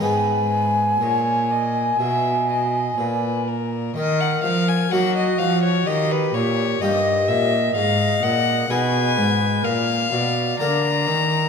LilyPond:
<<
  \new Staff \with { instrumentName = "Violin" } { \time 4/4 \key gis \minor \tempo 4 = 63 b'4 cis''8 dis''8 e''8 dis''8 b'8 ais'8 | \key ees \minor ees''16 ges''16 f''16 aes''16 ges''16 ees''16 f''16 des''16 ees''16 ces''16 des''8 ees''8 fes''8 | f''8 ges''8 aes''4 f''4 bes''4 | }
  \new Staff \with { instrumentName = "Flute" } { \time 4/4 \key gis \minor gis''2.~ gis''8 r8 | \key ees \minor bes'4 ges'4 g'4 ees''4~ | ees''4 ces''4 bes'8 d''4 r8 | }
  \new Staff \with { instrumentName = "Harpsichord" } { \time 4/4 \key gis \minor <gis b dis' b'>1 | \key ees \minor r4 <bes ees' ges'>4 r4 <bes ees' g'>4 | r4 <ces' ees' aes'>4 r4 <bes d' bes'>4 | }
  \new Staff \with { instrumentName = "Harpsichord" } { \clef bass \time 4/4 \key gis \minor gis,4 ais,4 b,4 ais,4 | \key ees \minor ees8 f8 ges8 f8 ees8 bes,8 g,8 bes,8 | aes,8 bes,8 ces8 aes,8 bes,8 ces8 d8 ees8 | }
  \new Staff \with { instrumentName = "Cello" } { \clef bass \time 4/4 \key gis \minor gis,4 ais,4 b,4 ais,4 | \key ees \minor ees8 f8 ges8 f8 ees8 bes,8 g,8 bes,8 | aes,8 bes,8 ces8 aes,8 bes,8 ces8 d8 ees8 | }
>>